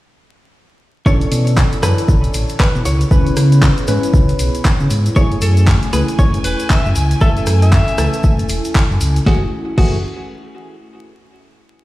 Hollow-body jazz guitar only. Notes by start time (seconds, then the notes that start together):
1.06 C#5
1.83 B4
2.60 B4
2.85 C#5
5.16 C#5
5.93 B4
6.19 C#5
7.21 A4
9.26 F#4
9.78 F#4